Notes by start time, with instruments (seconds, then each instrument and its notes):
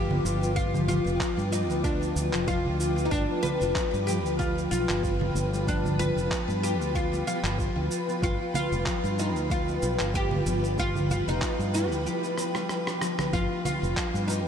Already playing: fretless electric bass G1, harp F3 B3 F4, ambient pad F4 B4 G5 D6, oud G4
0.11 harp B3, low conga
0.25 fretless electric bass G1, harp F4, shaker
0.43 harp F4, shaker
0.56 oud F4, kick, shaker
0.74 harp F3, low conga, shaker
0.88 harp F3, oud F4, low conga, shaker
1.06 fretless electric bass F1, shaker
1.20 harp F4, kick, clap, shaker
1.38 fretless electric bass G2, shaker
1.52 oud D#4, shaker
1.70 fretless electric bass D2, harp B3, shaker
1.84 oud D4, harp F4, kick, shaker
2.02 harp F4, shaker
2.16 fretless electric bass D2, shaker
2.33 fretless electric bass F1, harp F3, clap, shaker
2.48 harp F3, oud F4, kick, shaker
2.65 fretless electric bass D2
2.80 harp F4, shaker
2.98 shaker
3.05 oud D#4
3.11 fretless electric bass G1, oud D4, ambient pad B5, kick, shaker
3.30 harp B3
3.43 harp F4, oud B4, low conga, shaker
3.61 fretless electric bass F1, harp F4, shaker
3.75 kick, clap, shaker
3.94 fretless electric bass G2, harp G3, shaker
4.07 harp F3, oud G4, shaker
4.25 fretless electric bass D2, shaker
4.39 oud F4, harp F4, kick, shaker
4.58 shaker
4.71 fretless electric bass B1, oud F4, shaker
4.89 fretless electric bass G1, harp B3, clap, shaker
5.03 harp F4, kick, shaker
5.21 harp F4, low conga
5.35 fretless electric bass G1, shaker
5.53 harp G3, shaker
5.67 harp F3, oud D4, kick, shaker
5.85 low conga, shaker
5.99 harp F4, oud B4, low conga, shaker
6.16 fretless electric bass F1, shaker
6.31 kick, clap, shaker
6.48 fretless electric bass G2, harp B3, shaker
6.62 harp F4, oud G4, shaker
6.80 fretless electric bass D2, harp F4, shaker
6.95 oud F4, kick, shaker
7.12 harp G3, shaker
7.26 harp F3, oud F4, shaker
7.44 fretless electric bass G1, clap, shaker
7.58 harp F4, kick, shaker
7.76 fretless electric bass D2
7.91 shaker
8.08 harp B3, shaker
8.22 fretless electric bass G1, harp F4, oud F4, kick, shaker
8.40 harp F4
8.54 oud F4, low conga, shaker
8.72 fretless electric bass F1, harp G3, shaker
8.86 harp F3, kick, clap, shaker
9.04 fretless electric bass G2, shaker
9.18 oud D#4, harp F4, shaker
9.36 fretless electric bass D2, shaker
9.50 oud F4, kick, shaker
9.68 harp B3, shaker
9.82 fretless electric bass B1, harp F4, shaker
9.99 fretless electric bass G1, harp F4, clap, shaker
10.14 oud G4, kick, shaker
10.31 harp G3, low conga
10.46 fretless electric bass G1, harp F3, shaker
10.64 shaker
10.78 harp F4, oud F4, kick, shaker
10.95 low conga, shaker
11.10 oud F4, low conga, shaker
11.28 fretless electric bass F1, harp B3, oud D#4, shaker
11.42 harp F4, kick, clap, shaker
11.59 fretless electric bass G2, harp F4, shaker
11.74 oud G4, shaker
11.91 fretless electric bass D2, harp G3, shaker
12.05 harp F3, oud G4, shaker
12.24 shaker
12.37 harp B3, cross-stick, shaker
12.55 harp G3, cross-stick, shaker
12.69 cross-stick, shaker
12.87 harp D4, cross-stick, shaker
13.01 harp F3, cross-stick, shaker
13.18 harp B3, cross-stick, low conga, shaker
13.33 fretless electric bass G1, harp F3, oud F4, ambient pad D6, kick, shaker
13.65 harp F4, oud F4, low conga, shaker
13.83 fretless electric bass F1, shaker
13.97 kick, clap, shaker
14.14 fretless electric bass G2, harp B3, shaker
14.28 oud D#4, harp F4, shaker